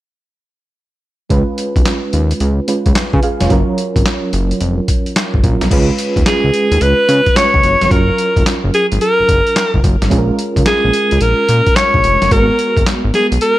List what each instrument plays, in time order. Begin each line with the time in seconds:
1.29 analog synth bass C#2, fm electric piano G#3 C#4 F4 B4, kick, closed hi-hat
1.58 closed hi-hat
1.76 analog synth bass B1, kick, closed hi-hat
1.85 snare, clap, closed hi-hat
2.13 analog synth bass D#2, closed hi-hat
2.31 closed hi-hat
2.40 analog synth bass C#2, closed hi-hat
2.68 fm electric piano G#3 C#4 F4 B4, closed hi-hat
2.86 analog synth bass C#2, kick, closed hi-hat
2.95 snare, clap, closed hi-hat
3.13 analog synth bass C#3, fm electric piano B4 G#5, kick
3.23 fm electric piano G#4 F5, closed hi-hat
3.40 analog synth bass F1, fm electric piano F4 C#5, snare, closed hi-hat
3.50 analog synth bass F#1, fm electric piano F#3 C#4 F4 A#4, kick, closed hi-hat
3.78 closed hi-hat
3.96 analog synth bass G#1, kick, closed hi-hat
4.06 snare, clap, closed hi-hat
4.33 analog synth bass F#1, closed hi-hat
4.51 closed hi-hat
4.61 analog synth bass F1, closed hi-hat
4.88 kick, closed hi-hat
5.06 closed hi-hat
5.16 snare, clap, closed hi-hat
5.34 analog synth bass G#1, kick
5.43 analog synth bass A#1, fm electric piano F#3 C#4 F4 A#4, kick, closed hi-hat
5.61 analog synth bass B1, snare, closed hi-hat
5.70 analog synth bass C#2, fm electric piano G#3 C#4 F4 B4, kick, closed hi-hat, crash
5.99 closed hi-hat
6.16 analog synth bass D#2, kick, closed hi-hat
6.26 alto saxophone G#4, snare, clap, closed hi-hat
6.44 analog synth bass C#2
6.54 closed hi-hat
6.72 analog synth bass D#2, closed hi-hat
6.81 analog synth bass C#2, alto saxophone B4, closed hi-hat
7.09 analog synth bass C#3, closed hi-hat
7.26 kick, closed hi-hat
7.35 fm electric piano G#3 C#4 F4 C#5, alto saxophone C#5, snare, clap, closed hi-hat
7.54 analog synth bass C#2, kick
7.63 analog synth bass F#1, closed hi-hat
7.81 analog synth bass F1, snare, closed hi-hat
7.89 analog synth bass F#1, fm electric piano F#3 C#4 F4 A#4, alto saxophone A#4, kick, closed hi-hat
8.18 closed hi-hat
8.36 analog synth bass F1, kick, closed hi-hat
8.46 snare, clap, closed hi-hat
8.64 analog synth bass F#1
8.74 alto saxophone G#4, closed hi-hat
8.92 analog synth bass G#1, closed hi-hat
9.01 alto saxophone A#4, closed hi-hat
9.20 analog synth bass F#1
9.29 analog synth bass F#1, kick, closed hi-hat
9.47 closed hi-hat
9.56 snare, clap, closed hi-hat
9.74 analog synth bass F#1, kick
9.84 analog synth bass F#1, kick, closed hi-hat
10.02 analog synth bass G#1, snare, closed hi-hat
10.10 analog synth bass A#1, fm electric piano G#3 C#4 F4 G#4, kick, closed hi-hat
10.18 fm electric piano A#4
10.39 closed hi-hat
10.56 analog synth bass C#2, kick, closed hi-hat
10.66 alto saxophone G#4, snare, clap, closed hi-hat
10.85 analog synth bass A#1
10.93 closed hi-hat
11.11 analog synth bass C#2, closed hi-hat
11.21 analog synth bass A#1, alto saxophone A#4, closed hi-hat
11.49 analog synth bass A#2, closed hi-hat
11.66 kick, closed hi-hat
11.76 alto saxophone C#5, snare, clap, closed hi-hat
11.94 analog synth bass A#1, kick
12.04 analog synth bass F1, closed hi-hat
12.22 analog synth bass F#1, snare, closed hi-hat
12.30 analog synth bass G#1, fm electric piano G#3 A#3 F#4 A#4, alto saxophone A#4, kick, closed hi-hat
12.37 fm electric piano B3
12.59 closed hi-hat
12.77 analog synth bass F#1, kick, closed hi-hat
12.86 snare, clap, closed hi-hat
13.04 analog synth bass G#1
13.14 alto saxophone G#4, snare, closed hi-hat
13.32 analog synth bass B1, closed hi-hat
13.41 alto saxophone A#4, closed hi-hat